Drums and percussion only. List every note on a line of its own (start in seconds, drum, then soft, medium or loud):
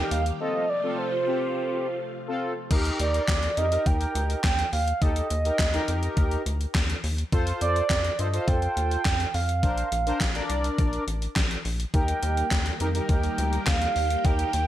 0.11 closed hi-hat medium
0.26 closed hi-hat medium
2.71 kick loud
2.71 closed hi-hat medium
2.71 crash loud
2.85 closed hi-hat medium
3.00 closed hi-hat medium
3.14 closed hi-hat soft
3.28 kick loud
3.28 snare loud
3.28 clap loud
3.28 closed hi-hat medium
3.43 closed hi-hat medium
3.57 closed hi-hat medium
3.72 closed hi-hat medium
3.86 kick loud
3.86 closed hi-hat medium
4.01 closed hi-hat soft
4.15 closed hi-hat medium
4.30 closed hi-hat soft
4.44 kick loud
4.44 snare loud
4.44 clap medium
4.44 closed hi-hat medium
4.59 closed hi-hat medium
4.73 open hi-hat medium
4.88 closed hi-hat medium
5.02 kick loud
5.02 closed hi-hat medium
5.16 closed hi-hat medium
5.30 closed hi-hat medium
5.45 closed hi-hat soft
5.59 kick loud
5.59 snare loud
5.59 clap loud
5.59 closed hi-hat medium
5.74 closed hi-hat medium
5.88 closed hi-hat medium
6.03 closed hi-hat medium
6.17 kick loud
6.17 closed hi-hat medium
6.31 closed hi-hat soft
6.46 closed hi-hat medium
6.61 closed hi-hat soft
6.75 kick loud
6.75 snare loud
6.75 clap medium
6.75 closed hi-hat medium
6.90 closed hi-hat medium
7.04 open hi-hat medium
7.18 closed hi-hat medium
7.32 kick loud
7.32 closed hi-hat medium
7.47 closed hi-hat medium
7.61 closed hi-hat medium
7.76 closed hi-hat soft
7.90 kick loud
7.90 snare loud
7.90 clap loud
7.90 closed hi-hat medium
8.04 closed hi-hat medium
8.19 closed hi-hat medium
8.34 closed hi-hat medium
8.48 kick loud
8.48 closed hi-hat medium
8.62 closed hi-hat soft
8.77 closed hi-hat medium
8.91 closed hi-hat soft
9.05 kick loud
9.05 snare loud
9.05 clap medium
9.05 closed hi-hat medium
9.20 closed hi-hat medium
9.34 open hi-hat medium
9.49 closed hi-hat medium
9.63 kick loud
9.63 closed hi-hat medium
9.78 closed hi-hat medium
9.92 closed hi-hat medium
10.07 closed hi-hat soft
10.21 kick loud
10.21 snare loud
10.21 clap loud
10.21 closed hi-hat medium
10.35 closed hi-hat medium
10.50 closed hi-hat medium
10.64 closed hi-hat medium
10.78 kick loud
10.78 closed hi-hat medium
10.93 closed hi-hat soft
11.08 closed hi-hat medium
11.22 closed hi-hat soft
11.36 kick loud
11.36 snare loud
11.36 clap medium
11.36 closed hi-hat medium
11.51 closed hi-hat medium
11.65 open hi-hat medium
11.80 closed hi-hat medium
11.94 kick loud
11.94 closed hi-hat medium
12.08 closed hi-hat medium
12.23 closed hi-hat medium
12.37 closed hi-hat soft
12.51 kick loud
12.51 snare loud
12.51 clap loud
12.51 closed hi-hat medium
12.66 closed hi-hat medium
12.80 closed hi-hat medium
12.95 closed hi-hat medium
13.09 kick loud
13.09 closed hi-hat medium
13.23 closed hi-hat soft
13.38 closed hi-hat medium
13.53 closed hi-hat soft
13.67 kick loud
13.67 snare loud
13.67 clap medium
13.67 closed hi-hat medium
13.82 closed hi-hat medium
13.96 open hi-hat medium
14.10 closed hi-hat medium
14.25 kick loud
14.25 closed hi-hat medium
14.39 closed hi-hat medium
14.53 closed hi-hat medium